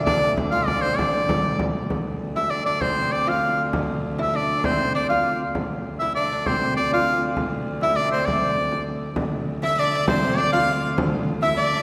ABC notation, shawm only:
X:1
M:6/8
L:1/8
Q:3/8=132
K:Dm
V:1 name="Shawm"
d2 z f d c | d4- d z | z3 e d d | c2 d f2 z |
z3 e d2 | c2 d f2 z | z3 e d2 | c2 d f2 z |
z3 e d c | d4 z2 | z3 e d2 | c2 d f2 z |
z3 e d2 |]